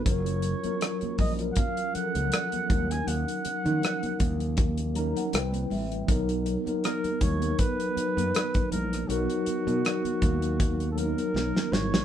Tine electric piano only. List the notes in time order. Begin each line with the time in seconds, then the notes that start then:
0.05 F#3 C#4 F4 A#4
0.63 F#3 C#4 F4 A#4
1.38 F#3 C#4 F4 A#4
1.93 F3 F#3 C#4 A4
2.03 A#4
2.68 F#3 C#4 D#4 A#4
3.64 F3 C#4 D#4 A#4
3.70 F#3
4.94 F#3 C#4 D#4 A#5
4.98 A#4
5.17 F#5
5.33 G3 C4 E4 B4 G5
5.72 E5
6.07 F#3 B3 D#4 A#4
6.65 F#3 B3 D#4 A#4
7.40 F#3 B3 D#4 A#4
7.95 F#3 B3 D#4 B4
9.07 F#3 B3 D#4 A#4
9.65 F#3 B3 D#4 A#4
10.96 F#3 B3 C#4
11.00 A#4
11.05 D#4